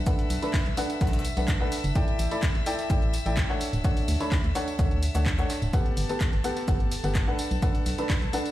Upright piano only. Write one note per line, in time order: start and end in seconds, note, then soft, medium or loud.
0.06 0.39 D4 medium
0.06 0.39 A4 medium
0.06 0.39 B4 medium
0.06 0.39 F#5 loud
0.42 0.57 D4 medium
0.42 0.57 A4 medium
0.42 0.56 B4 medium
0.42 0.57 B5 loud
0.77 0.98 D4 loud
0.77 0.98 A4 medium
0.77 0.98 B4 medium
0.77 0.98 F#5 loud
1.01 1.24 D4 medium
1.01 1.24 A4 medium
1.01 1.24 B4 medium
1.01 1.24 F#5 medium
1.37 1.58 D4 medium
1.37 1.58 A4 medium
1.37 1.58 B4 medium
1.37 1.58 F#5 medium
1.61 1.93 D4 medium
1.61 1.93 A4 medium
1.61 1.93 B4 medium
1.61 1.93 F#5 loud
1.96 2.28 E4 loud
1.96 2.28 A4 medium
1.96 2.28 D5 medium
1.96 2.28 G5 loud
2.31 2.45 E4 medium
2.31 2.45 A4 medium
2.31 2.45 D5 medium
2.31 2.45 B5 loud
2.66 2.87 E4 loud
2.66 2.87 A4 medium
2.66 2.87 D5 medium
2.66 2.87 G5 loud
2.90 3.13 E4 medium
2.90 3.13 A4 medium
2.90 3.13 D5 medium
2.90 3.13 G5 medium
3.26 3.47 E4 medium
3.26 3.47 A4 medium
3.26 3.47 D5 medium
3.26 3.47 G5 medium
3.49 3.82 D4 medium
3.49 3.82 A4 medium
3.49 3.82 C#5 medium
3.49 3.82 F#5 loud
3.84 4.17 D4 loud
3.84 4.17 A4 medium
3.84 4.17 C#5 medium
3.84 4.17 F#5 loud
4.20 4.34 D4 medium
4.20 4.34 A4 medium
4.20 4.34 C#5 medium
4.20 4.34 B5 loud
4.55 4.76 D4 loud
4.55 4.76 A4 medium
4.55 4.76 C#5 medium
4.55 4.76 F#5 loud
4.79 5.02 D4 medium
4.79 5.02 A4 medium
4.79 5.02 C#5 medium
4.79 5.02 F#5 medium
5.15 5.36 D4 medium
5.15 5.36 A4 medium
5.15 5.36 C#5 medium
5.15 5.36 F#5 medium
5.38 5.71 D4 medium
5.38 5.71 A4 medium
5.38 5.71 C#5 medium
5.38 5.71 F#5 loud
5.73 6.06 B3 medium
5.73 6.06 G4 medium
5.73 6.06 A4 medium
5.73 6.06 F#5 loud
6.09 6.23 B3 medium
6.09 6.23 G4 medium
6.09 6.23 A4 medium
6.09 6.23 A5 loud
6.44 6.65 B3 loud
6.44 6.65 G4 medium
6.44 6.65 A4 medium
6.44 6.65 F#5 loud
6.68 6.91 B3 medium
6.68 6.91 G4 medium
6.68 6.91 A4 medium
6.68 6.91 F#5 medium
7.04 7.25 B3 medium
7.04 7.25 G4 medium
7.04 7.25 A4 medium
7.04 7.25 F#5 medium
7.27 7.60 D4 medium
7.27 7.60 A4 medium
7.27 7.60 B4 medium
7.27 7.60 F#5 loud
7.62 7.95 D4 medium
7.62 7.95 A4 medium
7.62 7.95 B4 medium
7.62 7.95 F#5 loud
7.98 8.12 D4 medium
7.98 8.12 A4 medium
7.98 8.12 B4 medium
7.98 8.12 B5 loud
8.33 8.51 D4 loud
8.33 8.51 A4 medium
8.33 8.51 B4 medium
8.33 8.51 F#5 loud